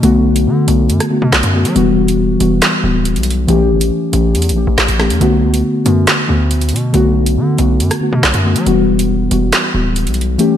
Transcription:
Already playing: D3 A3 B3 F#4
0.02 B1 D3 A3 B3 F#4, closed hi-hat
0.36 closed hi-hat
0.46 D3
0.67 B1 D3 A3 B3 F#4, closed hi-hat
0.90 F#2, closed hi-hat
1.00 cross-stick, closed hi-hat
1.10 D3 A3 B3 F#4
1.22 B2
1.33 B1, snare, clap
1.43 F#2, closed hi-hat
1.53 D3 A3 B3 F#4
1.65 F#3, closed hi-hat
1.75 E1 E3 G3 B3 F#4, closed hi-hat
2.08 closed hi-hat
2.39 E1 E3 G3 B3 F#4, closed hi-hat
2.62 snare, clap, closed hi-hat
2.83 D1 E3 G3 B3 F#4
3.05 closed hi-hat
3.16 B1, closed hi-hat
3.23 closed hi-hat
3.31 closed hi-hat
3.47 A1 E3 A3 C#4 G4, closed hi-hat
3.70 G1
3.81 A1, closed hi-hat
4.12 A1 E3 A3 C#4 G4, closed hi-hat
4.35 E2, closed hi-hat
4.42 closed hi-hat
4.49 A1, closed hi-hat
4.55 E3 A3 C#4 G4
4.67 A1
4.78 A1, snare, clap
4.88 A1, closed hi-hat
4.98 E3 A3 C#4 G4, cross-stick, snare
5.10 E2, closed hi-hat
5.20 B1 D3 A3 B3 F#4, closed hi-hat
5.43 C#2
5.54 closed hi-hat
5.85 F#2 D3 A3 B3 F#4, closed hi-hat
6.07 snare, clap, closed hi-hat
6.28 D2 D3 A3 B3 F#4
6.51 closed hi-hat
6.62 closed hi-hat
6.69 B2, closed hi-hat
6.76 closed hi-hat
6.93 B1 D3 A3 B3 F#4, closed hi-hat
7.26 closed hi-hat
7.37 D3
7.57 B1 D3 A3 B3 F#4, closed hi-hat
7.80 F#2, closed hi-hat
7.91 cross-stick, closed hi-hat
8.01 D3 A3 B3 F#4
8.13 B2
8.23 B1, snare, clap
8.34 F#2, closed hi-hat
8.44 D3 A3 B3 F#4
8.56 F#3, closed hi-hat
8.65 E1 E3 G3 B3 F#4, closed hi-hat
8.99 closed hi-hat
9.30 E1 E3 G3 B3 F#4, closed hi-hat
9.52 snare, clap, closed hi-hat
9.73 D1 E3 G3 B3 F#4
9.96 closed hi-hat
10.07 B1, closed hi-hat
10.14 closed hi-hat
10.21 closed hi-hat
10.38 E3 A3 C#4 G4, closed hi-hat

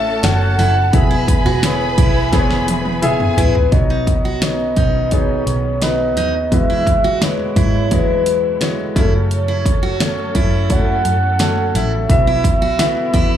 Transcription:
Already playing: A1 A2 A3 C#4 F#4 A4 E5 F#5 A5
0.23 F#1 C#4 F#4 A4 F#5, snare, closed hi-hat
0.58 F#1 E4, snare, open hi-hat
0.93 E1 B2 E3 B3 E4 G#4 B4 E5 G#5 B5, kick, closed hi-hat
1.11 E4
1.28 G#5, kick, closed hi-hat
1.45 E1 F#4
1.63 B3 E4 G#4 C#5, snare, closed hi-hat
1.98 B1 E4, kick, closed hi-hat
2.32 E1 B3 E4 G#4 C5, kick, snare, closed hi-hat
2.40 C#5
2.50 snare
2.68 closed hi-hat, high tom
2.85 high tom
3.02 B3 E4 G#4 E5 G#5, closed hi-hat, mid tom
3.20 mid tom
3.37 A1 E4 B4, closed hi-hat, floor tom
3.55 floor tom
3.72 B1 D#3 B3 C#4 D#4 F#4 C#5 D#5, kick, closed hi-hat
3.90 D#4
4.07 kick, closed hi-hat
4.25 F#4
4.41 B3 D#4 F#4 C#5 D#5, snare, closed hi-hat
4.76 B1 D#4, kick, closed hi-hat
5.11 B3 D#4 F#4 G#4 C#5, kick, closed hi-hat
5.47 B1, closed hi-hat
5.82 B3 D#4 F#4 B4 D#5, snare, closed hi-hat
6.17 D#2 D#4, snare, closed hi-hat
6.51 E2 B2 F#3 G#3 E4 F#4 B4 E5, kick, closed hi-hat
6.70 E4
6.87 kick, closed hi-hat
7.04 F#4
7.22 G#3 E4 F#4 B4 C#5, snare, closed hi-hat
7.56 G#2 E4, kick, closed hi-hat
7.91 E2 G#3 E4 F#4 B4 C#5, kick, closed hi-hat
8.26 closed hi-hat
8.61 G#3 E4 F#4 C#5, snare, closed hi-hat
8.95 F#2 C#3 F#3 A3 C#4 E4 F#4 A4 C#5, kick, snare, closed hi-hat
9.31 C#5, closed hi-hat
9.48 E4
9.66 kick, closed hi-hat
9.83 F#4
9.99 A3 C#4 F#4 C#5, snare, closed hi-hat
10.35 F#2 E4, kick, closed hi-hat
10.69 A3 C#4 F#4 C#5 F#5, kick, closed hi-hat
11.05 F#2, closed hi-hat
11.39 A3 C#4 F#4 A4, snare, closed hi-hat
11.75 A1 E4 E5, snare, closed hi-hat
12.10 B1 B2 F#3 B3 E4 F#4 E5, kick, closed hi-hat
12.27 E4
12.44 kick, closed hi-hat
12.62 F#4
12.79 B3 E4 F#4 E5, snare, closed hi-hat
13.14 E2 E4, kick, closed hi-hat

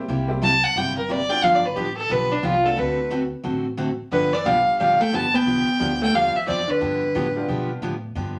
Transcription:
0.08 C2 C3 G3 A#3 E4 G4
0.28 G3 A#3 C4 E4 G4
0.42 C3 G3 A#3 E4 G4 A5
0.64 F#5
0.76 G1 C3 G3 A#3 E4 G4 G5
0.97 A#4
1.08 C3 G3 A#3 E4 G4 D5
1.29 G3 B3 D4 F4 G4 G5
1.43 G1 D3 F3 B3 D4 G4 F5
1.55 D5
1.65 B4
1.76 A1 D3 F3 B3 D4 G4
1.97 A4
2.09 B1 D3 F3 B3 D4 G4 B4
2.31 D4
2.43 C2 D3 F3 B3 D4 F4 G4
2.63 A3 C4 D4 F#4 A4
2.76 D2 D3 A3 C4 F#4 A4 B4
3.11 D3 A3 C4 F#4 A4
3.44 A1 D3 A3 C4 F#4 A4
3.77 D3 A3 C4 F#4 A4
4.11 G1 D3 F3 B3 D4 G4 B4
4.33 E3 D5
4.44 B1 D3 F3 G3 B3 D4 F4 G4 F5
4.67 muted upright bass stroke
4.78 A1 D3 F3 G3 B3 D4 G4 F5
5.00 A3 G5, muted upright bass stroke
5.12 G1 D3 F3 B3 D4 G4 A5
5.34 B3 G5
5.46 B1 D3 F3 B3 D4 G4
5.79 D2 D3 F3 G3 B3 D4 F4 G4
6.02 A3 G5
6.14 E2 D3 F3 G3 B3 D4 G4 F5
6.35 F3 E5, muted upright bass stroke
6.47 F2 D3 F3 B3 D4 G4 D5
6.68 D3 B4, muted upright bass stroke
6.81 G2 D3 F3 B3 D4 G4
7.15 A2 D3 F3 B3 D4 G4
7.36 G3 B3 D4 F4 G4
7.48 B2 D3 F3 B3 D4 G4
7.82 A2 D3 F3 B3 D4 G4
8.15 G2 D3 F3 B3 D4 G4

